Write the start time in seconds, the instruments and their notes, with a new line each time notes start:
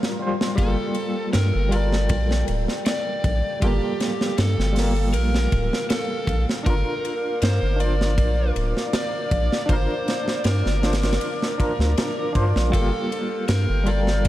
Already playing: reed electric piano G3 F4 A#4 C5
0.03 snare
0.19 reed electric piano G3 F4 C5
0.41 snare
0.55 analog synth bass G1, reed electric piano G3 F4, electric slide guitar A4, analog synth pad F5 G5, kick, ride
0.60 reed electric piano A#3 G4
0.95 ride
1.33 analog synth bass G2, electric slide guitar A#4, snare, ride
1.55 analog synth bass G1
1.69 reed electric piano G3 F4, electric slide guitar D5, ride
1.74 reed electric piano A4 A#4
1.92 snare
2.09 analog synth bass A#1, kick, ride
2.31 snare
2.48 analog synth bass D1, ride
2.68 snare
2.86 electric slide guitar D5, snare, ride
3.24 analog synth bass A#1, kick, ride
3.60 analog synth bass G1, reed electric piano G3 F4, electric slide guitar G4, kick, ride
3.64 reed electric piano A#3 A4
4.00 snare, ride
4.21 snare
4.38 analog synth bass G2, electric slide guitar A4, snare, ride
4.58 analog synth bass G1, snare
4.73 reed electric piano G3 F4, open hi-hat
4.77 reed electric piano A#3 G4, snare
4.96 ride
5.13 analog synth bass A#1, electric slide guitar A#4, ride
5.34 snare
5.52 analog synth bass D1, kick, ride
5.73 snare
5.90 electric slide guitar A4, snare, ride
6.27 analog synth bass A#1, kick, ride
6.49 snare
6.63 analog synth bass G1, reed electric piano D4 F4, analog synth pad A#4 D5 D6, electric slide guitar A#4, kick, ride
6.70 reed electric piano A#4
7.05 ride
7.42 analog synth bass G2, electric slide guitar C5, snare, ride
7.62 analog synth bass G1
7.77 reed electric piano D4 F4, electric slide guitar D5, ride
7.83 reed electric piano C5
8.01 snare
8.18 analog synth bass A#1, kick, ride
8.56 analog synth bass D1, ride
8.77 snare
8.93 electric slide guitar D5, snare, ride
9.31 analog synth bass A#1, kick, ride
9.52 snare
9.66 analog synth bass G1, reed electric piano D4 F4, electric slide guitar C5, kick, ride
9.73 reed electric piano A#4
10.08 snare, ride
10.28 snare
10.44 analog synth bass G2, electric slide guitar A#4, snare, ride
10.66 analog synth bass G1, snare
10.82 reed electric piano D4 F4 C5, snare, ride
10.93 snare, ride
11.03 snare, ride
11.13 snare, ride
11.21 ride
11.42 snare
11.58 reed electric piano D4 F4 A#4, kick, ride
11.79 analog synth bass D2, snare
11.97 snare, ride
12.33 analog synth bass G2, reed electric piano D4 F4 C5, kick, ride
12.56 analog synth bass A#1, snare
12.70 analog synth bass G1, reed electric piano G3 F4, electric slide guitar A4, analog synth pad F5 G5, kick
12.74 reed electric piano A#3 G4, ride
13.12 ride
13.48 analog synth bass G2, electric slide guitar A#4, snare, ride
13.69 analog synth bass G1
13.84 reed electric piano G3 F4 A4, electric slide guitar D5, ride
13.90 reed electric piano A#4
14.07 snare
14.25 ride